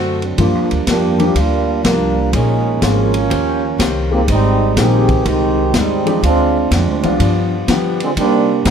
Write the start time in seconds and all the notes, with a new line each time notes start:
Already playing: F#2 D3 A3 C4 F#4
0.22 D3 F#3 A3 C4, ride
0.38 G2 F3 G3 A#3 D4 F4, kick, ride
0.55 F2
0.71 D2, ride
0.87 F2 G2 F3 A#3 D4 G4, kick, snare, hi-hat pedal, ride
1.18 F3 G3 A#3 D4 G4, ride
1.34 D2 G2 F3 G3 A#3 D4 F4, kick, ride
1.83 C2 G2 F3 G3 A#3 D4, kick, snare, hi-hat pedal, ride
2.33 A#1 A#2 F3 G#3 A#3 C#4 D#4, kick, ride
2.82 G#1 A#2 F3 G#3 A#3 C4 C#4 F4, kick, snare, hi-hat pedal, ride
3.14 ride
3.28 D#2 D#3 C#4 G4 C5, kick, ride
3.78 C2 D#3 C#4 G4 C5, kick, snare, hi-hat pedal, ride
4.10 F3 G3 G#3 A#3 C4 D#4 G4
4.14 C4
4.27 G#1 G#2 G3 G#3 C4 D#4, kick, ride
4.77 A#1 G#2 D#3 G3 G#3 A#3 C4 D#4 G4 G#4, kick, snare, hi-hat pedal, ride
5.09 kick, ride
5.25 C2 G#2 D#3 G3 G#3 C4 D#4 G4, kick, ride
5.74 D#2 G#2 G3 G#3 C4 D#4, kick, snare, hi-hat pedal, ride
6.06 F3 G#3 C4 D4 G4, ride
6.22 D2 D3 G#3 C4 D4 F4, kick, ride
6.71 F2 D3 F3 G#3 C4 D4 F4, kick, snare, hi-hat pedal, ride
6.88 D2
7.03 C2 F3 G3 B3 D4 F4, ride
7.19 G2 F3 B3 D4, kick, ride
7.68 G2 D3 F3 G3 B3 D4 G4, kick, snare, hi-hat pedal, ride
8.00 D3 F3 G#3 C4, ride
8.15 C3 G3 A#3 C4 D4 D#4, kick, ride
8.65 G2 C3 D#3 G3 A#3 C4 D4 D#4, kick, snare, hi-hat pedal, ride